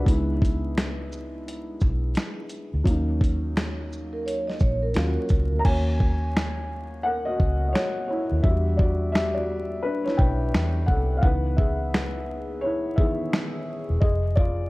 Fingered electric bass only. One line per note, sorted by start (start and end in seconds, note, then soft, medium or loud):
0.07 1.77 C#2 medium
1.82 2.14 B1 medium
2.74 2.85 D2 medium
2.86 4.56 D#2 medium
4.61 4.94 A#1 medium
4.96 5.16 D#2 medium
5.31 5.51 C#2 medium
5.53 5.64 D2 medium
5.65 7.35 D#2 loud
7.40 7.73 C#2 medium
8.32 8.43 D#2 medium
8.44 9.80 E2 medium
10.19 10.52 B1 medium
10.54 10.86 E2 medium
10.89 11.21 C2 medium
11.23 12.98 C#2 loud
13.90 14.02 E1 medium
14.02 14.70 F1 loud